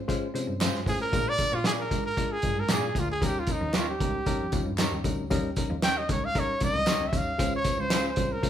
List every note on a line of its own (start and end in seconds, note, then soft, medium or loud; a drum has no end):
0.00 0.11 G#2 medium
0.08 0.27 G#3 loud
0.08 0.27 C#4 loud
0.08 0.27 F4 loud
0.08 0.27 C5 loud
0.08 kick medium
0.08 closed hi-hat medium
0.08 tambourine soft
0.34 0.43 C3 medium
0.34 0.53 G#3 medium
0.34 0.53 C#4 medium
0.34 0.54 F4 medium
0.34 0.54 C5 loud
0.34 closed hi-hat medium
0.34 tambourine soft
0.47 0.57 G2 medium
0.60 0.79 G#2 medium
0.60 0.80 G#3 medium
0.60 0.74 C#4 medium
0.60 0.80 C#4 medium
0.60 0.75 F4 medium
0.60 0.80 F4 medium
0.60 0.80 C5 loud
0.60 0.75 C5 medium
0.60 snare loud
0.60 clap medium
0.60 closed hi-hat medium
0.60 tambourine loud
0.75 snare soft
0.86 1.05 A2 medium
0.86 1.06 G#3 medium
0.86 1.06 C#4 medium
0.86 1.06 F4 medium
0.86 1.00 G#4 medium
0.86 1.06 C5 medium
0.86 kick medium
0.86 open hi-hat soft
0.86 tambourine medium
1.02 1.31 A#4 loud
1.13 1.32 A#2 loud
1.13 1.32 G#3 medium
1.13 1.32 D4 medium
1.13 1.32 F4 medium
1.13 1.32 A#4 loud
1.13 kick medium
1.13 closed hi-hat medium
1.13 tambourine medium
1.29 1.57 D5 loud
1.38 1.58 G#3 medium
1.38 1.58 D4 medium
1.38 1.58 F4 medium
1.38 1.58 A#4 medium
1.38 kick medium
1.38 closed hi-hat medium
1.38 tambourine medium
1.52 1.81 A#2 loud
1.52 1.66 F4 medium
1.64 1.84 G#3 medium
1.64 1.84 D4 medium
1.64 1.84 F4 medium
1.64 1.79 F4 medium
1.64 1.79 G#4 medium
1.64 1.73 G#4 loud
1.64 1.84 A#4 medium
1.64 1.79 D5 loud
1.64 snare loud
1.64 clap medium
1.64 closed hi-hat medium
1.64 tambourine medium
1.80 2.03 A#4 medium
1.91 2.19 G#2 medium
1.91 2.10 G#3 medium
1.91 2.10 D4 medium
1.91 2.10 F4 medium
1.91 2.10 A#4 medium
1.91 kick medium
1.91 closed hi-hat medium
1.91 tambourine soft
2.06 2.33 A#4 medium
2.17 2.36 G#3 medium
2.17 2.37 D4 medium
2.17 2.37 F4 medium
2.17 2.37 A#4 medium
2.17 kick medium
2.17 closed hi-hat medium
2.32 2.61 G#4 medium
2.42 2.53 G2 medium
2.42 2.62 G#3 medium
2.42 2.63 D4 medium
2.42 2.63 F4 medium
2.42 2.63 A#4 medium
2.42 kick medium
2.42 closed hi-hat medium
2.42 tambourine soft
2.56 2.66 G#2 medium
2.56 2.75 A#4 medium
2.68 2.89 A#2 loud
2.68 2.89 G#3 medium
2.68 2.88 D4 medium
2.68 2.83 F4 medium
2.68 2.89 F4 medium
2.68 2.84 G#4 medium
2.68 2.89 A#4 medium
2.68 2.84 D5 medium
2.68 snare loud
2.68 clap medium
2.68 closed hi-hat loud
2.68 tambourine loud
2.73 3.01 G#4 medium
2.95 3.14 D2 medium
2.95 3.15 G#3 medium
2.95 3.15 D4 medium
2.95 3.15 F4 medium
2.95 3.15 A#4 medium
2.95 kick medium
2.95 closed hi-hat medium
2.95 tambourine soft
3.00 3.11 F4 medium
3.11 3.27 G#4 medium
3.21 3.41 D#2 loud
3.21 3.41 G3 loud
3.21 3.41 C#4 medium
3.21 3.41 D#4 medium
3.21 3.41 A#4 loud
3.21 kick medium
3.21 closed hi-hat medium
3.21 tambourine medium
3.26 3.41 G4 medium
3.39 3.54 F4 medium
3.47 3.67 G3 medium
3.47 3.67 C#4 medium
3.47 3.67 D#4 medium
3.47 3.68 A#4 medium
3.47 kick medium
3.47 closed hi-hat medium
3.47 tambourine soft
3.52 3.80 D#4 medium
3.61 3.89 D#2 loud
3.73 3.93 G3 medium
3.73 3.93 C#4 medium
3.73 3.88 D#4 medium
3.73 3.93 D#4 medium
3.73 3.88 G4 medium
3.73 3.93 A#4 medium
3.73 3.88 C#5 medium
3.73 snare loud
3.73 clap medium
3.73 closed hi-hat medium
3.73 tambourine medium
3.79 3.88 F4 medium
3.89 4.62 G4 medium
4.00 4.19 C#2 medium
4.00 4.19 G3 medium
4.00 4.19 C#4 medium
4.00 4.19 D#4 medium
4.00 4.20 A#4 medium
4.00 kick medium
4.00 closed hi-hat medium
4.00 tambourine soft
4.26 4.45 G3 medium
4.26 4.45 C#4 medium
4.26 4.46 D#4 medium
4.26 4.45 A#4 loud
4.26 kick medium
4.26 closed hi-hat medium
4.26 tambourine soft
4.39 4.49 F2 medium
4.52 4.62 D#2 medium
4.52 4.71 G3 medium
4.52 4.71 C#4 medium
4.52 4.71 D#4 medium
4.52 4.72 F4 loud
4.52 kick medium
4.52 closed hi-hat medium
4.52 tambourine soft
4.66 4.85 G2 medium
4.78 4.98 G3 medium
4.78 4.98 C#4 medium
4.78 4.92 D#4 medium
4.78 4.98 D#4 medium
4.78 4.92 G4 medium
4.78 4.98 A#4 loud
4.78 4.93 C#5 medium
4.78 snare loud
4.78 clap medium
4.78 closed hi-hat medium
4.78 tambourine medium
4.92 5.01 D#2 medium
5.04 5.23 D2 medium
5.04 5.24 G3 medium
5.04 5.24 C#4 medium
5.04 5.24 D#4 medium
5.04 5.24 A#4 medium
5.04 kick medium
5.04 closed hi-hat medium
5.04 tambourine soft
5.30 5.50 D#2 loud
5.30 5.50 G3 loud
5.30 5.50 C#4 loud
5.30 5.50 D#4 loud
5.30 5.50 A#4 loud
5.30 kick medium
5.30 closed hi-hat medium
5.30 tambourine medium
5.56 5.76 G3 medium
5.56 5.76 C#4 medium
5.56 5.76 D#4 medium
5.56 5.76 A#4 medium
5.56 kick medium
5.56 closed hi-hat medium
5.56 tambourine medium
5.70 5.99 D#2 loud
5.82 6.02 G3 medium
5.82 6.02 C#4 medium
5.82 6.02 D#4 medium
5.82 5.97 D#4 medium
5.82 5.97 G4 loud
5.82 6.02 A#4 medium
5.82 5.97 C#5 loud
5.82 5.99 G5 loud
5.82 snare loud
5.82 clap medium
5.82 closed hi-hat medium
5.82 tambourine medium
5.98 6.10 D#5 medium
6.09 6.37 C#2 medium
6.09 6.28 G3 medium
6.09 6.28 C#4 medium
6.09 6.28 D#4 medium
6.09 6.28 A#4 medium
6.09 6.27 C#5 medium
6.09 kick medium
6.09 closed hi-hat medium
6.09 tambourine soft
6.25 6.41 F5 loud
6.35 6.54 G3 medium
6.35 6.54 C#4 medium
6.35 6.54 D#4 medium
6.35 6.54 A#4 loud
6.35 kick medium
6.35 closed hi-hat medium
6.35 tambourine soft
6.39 6.63 C#5 medium
6.60 6.70 C2 medium
6.60 6.80 G3 medium
6.60 6.80 C#4 medium
6.60 6.80 D#4 medium
6.60 6.80 A#4 medium
6.60 7.09 D#5 loud
6.60 kick medium
6.60 closed hi-hat medium
6.60 tambourine medium
6.74 6.83 C#2 medium
6.86 7.06 G3 medium
6.86 7.06 C#4 medium
6.86 7.06 D#4 medium
6.86 7.01 D#4 medium
6.86 7.02 G4 medium
6.86 7.06 A#4 medium
6.86 7.02 C#5 medium
6.86 snare loud
6.86 clap loud
6.86 closed hi-hat medium
6.86 tambourine loud
7.00 7.09 D#2 soft
7.07 7.19 E5 medium
7.12 7.32 D#2 medium
7.12 7.32 G3 medium
7.12 7.32 C#4 medium
7.12 7.32 D#4 medium
7.12 7.32 C#5 medium
7.12 kick medium
7.12 closed hi-hat medium
7.12 tambourine soft
7.17 7.54 F5 loud
7.38 7.58 C#2 loud
7.38 7.58 G#3 loud
7.38 7.58 C#4 medium
7.38 7.58 F4 medium
7.38 7.58 C5 loud
7.38 kick medium
7.38 closed hi-hat medium
7.38 tambourine medium
7.56 7.82 C#5 medium
7.64 7.84 G#3 medium
7.64 7.84 C#4 medium
7.64 7.84 F4 medium
7.64 7.84 C5 medium
7.64 kick medium
7.64 closed hi-hat medium
7.64 tambourine medium
7.78 8.06 C#2 loud
7.78 8.05 C5 medium
7.90 8.10 G#3 medium
7.90 8.10 C#4 medium
7.90 8.05 C#4 medium
7.90 8.10 F4 medium
7.90 8.05 F4 medium
7.90 8.10 G#4 medium
7.90 8.06 C5 medium
7.90 snare loud
7.90 clap medium
7.90 closed hi-hat medium
7.90 tambourine medium
8.09 8.34 C5 medium
8.16 8.46 C2 medium
8.16 8.36 G#3 medium
8.16 8.36 C#4 medium
8.16 8.36 F4 medium
8.16 8.36 C5 medium
8.16 kick medium
8.16 closed hi-hat medium
8.16 tambourine soft
8.32 8.50 A#4 medium
8.43 8.50 G#3 medium
8.43 8.50 C#4 medium
8.43 8.50 F4 medium
8.43 8.50 C5 loud
8.43 kick medium
8.43 closed hi-hat medium
8.43 tambourine soft